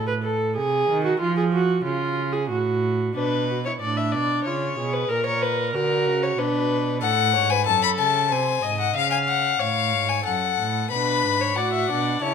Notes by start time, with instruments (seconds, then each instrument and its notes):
Already playing: cello A2
0.07 viola B4
0.23 viola A4
0.57 cello C3, viola G#4
0.89 cello D#3
1.05 viola F#4
1.20 cello F3, viola F4
1.37 viola G#4
1.53 viola F#4
1.84 cello C#3, viola F4
2.33 viola G#4
2.49 cello A2, viola F#4
3.15 cello B2, viola D4, violin B4
3.50 viola F#4
3.65 viola E4, violin C#5
3.80 cello A2, viola D4, violin D5
3.97 violin E5
4.12 cello B2, violin D5
4.44 cello C#3, viola F4, violin C#5
4.79 cello B2, viola G#4
4.93 violin B4
5.09 cello A#2, violin A#4, viola A#4
5.26 violin C#5
5.42 violin B4
5.73 cello D3, viola F#4, violin A#4
6.06 cello C#3
6.23 violin C#5
6.38 cello B2, viola D4, violin B4
7.02 cello A2, violin A4 F#5
7.34 cello G#2, violin C#5
7.50 violin B4 G#5
7.66 cello F#2, violin A4 A5
7.83 violin B5
7.99 cello C#3, violin A5
8.31 cello C3, violin C5 G#5
8.62 cello G#2, violin D#5
8.80 violin F#5
8.95 cello C#3, violin F5
9.11 violin G#5
9.28 violin F#5
9.60 cello A2, violin C#5 F5
9.93 cello G#2
10.09 violin G#5
10.25 cello F#2, violin A4 F#5
10.59 cello A2
10.91 cello B2, viola D4, violin B4 B5
11.24 cello G#2
11.41 violin C#5
11.56 cello A2, viola F#4, violin D5 F#5
11.73 violin E5
11.89 cello B2, viola D4, violin D5
12.22 cello C#3, viola E4, violin C#5 A5